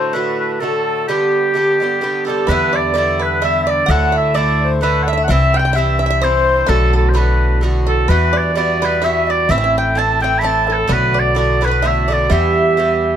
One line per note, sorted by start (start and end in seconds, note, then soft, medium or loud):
0.00 0.12 A2 medium
0.00 0.14 D3 medium
0.00 0.14 A3 medium
0.00 0.14 F#4 medium
0.00 0.15 C5 medium
0.00 0.16 C5 medium
0.13 0.59 A2 medium
0.13 0.61 D3 medium
0.13 0.61 A3 medium
0.13 0.62 F#4 medium
0.13 0.64 B4 medium
0.13 0.39 B4 medium
0.40 0.53 B4 medium
0.53 0.61 B4 medium
0.60 1.07 A2 soft
0.60 1.08 D3 soft
0.60 1.08 A3 soft
0.60 1.09 F#4 medium
0.60 1.07 A4 medium
0.60 1.10 A4 medium
1.08 1.53 G2 medium
1.08 1.55 D3 medium
1.08 1.56 B3 medium
1.08 2.24 G4 loud
1.08 2.00 G4 medium
1.08 1.57 G4 medium
1.54 1.79 G2 soft
1.54 1.80 D3 medium
1.54 1.81 B3 medium
1.54 1.82 G4 medium
1.80 2.00 G2 medium
1.80 2.00 D3 soft
1.80 2.02 B3 medium
1.80 2.02 G4 medium
2.01 2.25 G2 medium
2.01 2.27 D3 medium
2.01 2.28 B3 medium
2.01 2.29 G4 medium
2.25 2.47 G2 medium
2.25 2.48 D3 medium
2.25 2.47 A4 medium
2.25 2.50 A4 medium
2.25 2.51 A4 medium
2.29 2.49 B3 medium
2.29 2.49 G4 medium
2.47 3.86 E2 medium
2.47 2.94 G2 medium
2.47 2.95 D3 medium
2.47 2.96 B3 medium
2.47 2.72 B4 medium
2.47 2.78 B4 loud
2.47 2.74 B4 medium
2.51 2.98 E4 medium
2.73 2.93 D5 medium
2.73 2.94 D5 medium
2.73 2.96 D5 medium
2.94 3.40 G2 medium
2.94 3.41 D3 medium
2.94 3.42 B3 medium
2.94 3.19 D5 medium
2.94 3.20 D5 medium
2.98 3.44 E4 medium
2.98 3.24 D5 medium
3.19 3.41 B4 medium
3.19 3.40 B4 medium
3.19 3.42 B4 medium
3.42 3.88 G2 medium
3.42 3.88 D3 medium
3.42 3.89 B3 medium
3.42 3.91 E4 medium
3.42 3.66 E5 medium
3.42 3.69 E5 medium
3.42 3.61 E5 loud
3.63 3.86 D5 medium
3.63 3.72 E5 medium
3.67 3.91 D5 medium
3.67 3.92 D5 loud
3.86 5.26 D2 medium
3.86 4.33 A2 medium
3.86 4.34 D3 medium
3.86 4.11 F#5 medium
3.86 4.18 F#5 medium
3.90 4.35 A3 medium
3.90 4.37 E4 medium
3.90 4.16 F#5 loud
4.12 4.32 E5 medium
4.16 4.39 E5 medium
4.16 4.37 E5 medium
4.34 4.80 A2 medium
4.34 4.81 D3 medium
4.34 4.82 A3 medium
4.34 4.82 E4 medium
4.34 4.78 D5 medium
4.34 4.69 D5 loud
4.34 4.62 D5 medium
4.63 4.84 C5 medium
4.81 5.28 A2 medium
4.81 5.29 D3 medium
4.81 5.29 A3 medium
4.81 5.29 E4 medium
4.81 5.09 B4 medium
4.81 5.04 B4 medium
4.81 5.07 B4 medium
5.03 5.11 F#5 medium
5.07 5.28 E5 medium
5.07 5.12 E5 medium
5.07 5.23 E5 loud
5.13 5.16 E5 medium
5.18 5.27 E5 medium
5.24 5.53 E5 medium
5.24 5.33 F#5 medium
5.28 6.66 C2 medium
5.28 5.74 G2 medium
5.28 5.76 E3 medium
5.28 5.76 C4 loud
5.28 5.77 E4 medium
5.28 5.55 E5 medium
5.28 5.59 E5 loud
5.53 5.76 G5 medium
5.53 5.58 G5 loud
5.53 5.78 G5 loud
5.59 5.64 G5 medium
5.65 5.73 G5 medium
5.73 6.21 G2 medium
5.73 6.22 E3 medium
5.73 5.98 E5 medium
5.73 6.01 E5 medium
5.73 6.02 E5 loud
5.78 6.23 C4 medium
5.78 6.23 E4 medium
5.99 6.05 E5 medium
5.99 6.25 E5 loud
5.99 6.21 E5 medium
6.06 6.09 E5 medium
6.10 6.22 E5 loud
6.22 6.66 G2 medium
6.22 6.68 E3 medium
6.22 6.68 C4 medium
6.22 6.69 E4 medium
6.22 6.65 C5 medium
6.22 6.71 C5 medium
6.22 6.71 C5 loud
6.66 8.06 B1 medium
6.66 7.12 A2 medium
6.66 7.14 D3 medium
6.66 7.16 B3 medium
6.66 7.17 F#4 loud
6.66 6.92 A4 medium
6.66 6.95 A4 loud
6.66 6.95 A4 medium
6.93 7.13 A4 medium
6.93 7.14 A4 medium
6.93 7.11 A4 medium
7.09 7.19 C5 medium
7.14 7.60 A2 medium
7.14 7.61 D3 medium
7.14 7.62 B3 medium
7.14 7.63 F#4 medium
7.14 7.56 B4 medium
7.14 7.60 B4 medium
7.61 8.09 A2 soft
7.61 8.09 D3 medium
7.61 8.09 B3 medium
7.61 8.10 F#4 medium
7.87 8.08 A4 medium
7.87 8.07 A4 medium
7.87 8.11 A4 medium
8.08 9.47 E2 medium
8.08 8.54 G2 medium
8.08 8.56 E3 medium
8.08 8.56 B3 medium
8.08 8.57 F#4 medium
8.08 8.52 B4 medium
8.08 8.33 B4 medium
8.08 8.39 B4 loud
8.33 8.54 D5 medium
8.38 8.57 D5 medium
8.54 8.81 G2 medium
8.54 8.82 E3 medium
8.54 8.83 B3 medium
8.54 9.03 D5 medium
8.54 8.83 D5 medium
8.54 8.87 D5 loud
8.58 8.83 F#4 medium
8.82 9.01 G2 medium
8.82 9.02 E3 medium
8.82 9.03 B3 soft
8.82 9.04 F#4 medium
8.82 9.01 B4 medium
8.82 9.06 B4 medium
9.02 9.48 G2 medium
9.02 9.48 E3 medium
9.02 9.50 B3 medium
9.02 9.26 E5 medium
9.02 9.29 E5 medium
9.02 9.32 E5 loud
9.06 9.51 F#4 medium
9.27 9.50 D5 medium
9.27 9.49 D5 medium
9.27 9.52 D5 loud
9.48 10.87 A1 medium
9.48 9.94 A2 medium
9.48 9.95 E3 medium
9.48 9.96 C4 medium
9.48 9.97 E4 medium
9.48 9.98 E5 medium
9.48 9.76 E5 loud
9.48 9.57 E5 medium
9.58 9.63 E5 medium
9.64 9.76 E5 medium
9.78 9.98 G5 medium
9.78 10.00 G5 medium
9.95 10.19 A2 medium
9.95 10.21 E3 medium
9.95 10.22 C4 medium
9.95 10.23 E4 medium
9.95 10.23 A5 medium
9.95 10.21 A5 loud
9.95 10.24 A5 medium
10.20 10.40 A2 medium
10.20 10.41 E3 medium
10.20 10.42 C4 medium
10.20 10.43 E4 medium
10.20 10.41 G5 medium
10.20 10.41 G5 loud
10.20 10.43 G5 medium
10.39 10.86 A2 medium
10.39 10.88 E3 medium
10.39 10.69 A5 loud
10.39 10.48 B5 medium
10.43 10.89 C4 medium
10.43 10.89 E4 medium
10.43 10.68 A5 medium
10.43 10.74 A5 loud
10.67 10.74 A4 medium
10.67 10.89 A4 medium
10.73 10.95 A4 loud
10.73 10.80 B4 medium
10.78 10.89 A4 medium
10.88 12.27 B1 medium
10.88 11.34 A2 medium
10.88 11.35 D3 medium
10.88 11.37 B3 loud
10.88 11.37 F#4 medium
10.88 11.14 B4 medium
10.93 11.21 B4 loud
11.14 11.34 D5 medium
11.14 11.35 D5 medium
11.20 11.38 D5 loud
11.35 11.60 A2 medium
11.35 11.61 D3 medium
11.35 11.62 B3 medium
11.35 11.63 F#4 medium
11.35 11.61 D5 medium
11.35 11.64 D5 medium
11.39 11.67 D5 loud
11.61 11.81 A2 medium
11.61 11.82 D3 medium
11.61 11.84 B3 medium
11.61 11.84 F#4 medium
11.61 11.66 B4 medium
11.61 11.85 B4 medium
11.65 11.89 B4 loud
11.65 11.70 B4 medium
11.71 11.82 B4 medium
11.82 12.07 A2 medium
11.82 12.09 D3 medium
11.82 12.10 B3 medium
11.82 12.11 F#4 medium
11.82 12.07 E5 medium
11.82 12.12 E5 medium
11.87 12.15 E5 medium
12.08 12.29 A2 medium
12.08 12.31 D3 medium
12.08 12.30 B3 medium
12.08 12.30 D5 medium
12.08 12.31 D5 medium
12.12 12.32 F#4 medium
12.12 12.32 D5 medium
12.30 13.16 E2 medium
12.30 12.76 G2 medium
12.30 12.77 E3 medium
12.30 12.78 B3 medium
12.30 12.78 G4 medium
12.30 13.16 E5 medium
12.30 13.16 E5 loud
12.77 13.16 G2 medium
12.77 13.16 E3 medium
12.77 13.16 B3 medium
12.77 13.16 G4 medium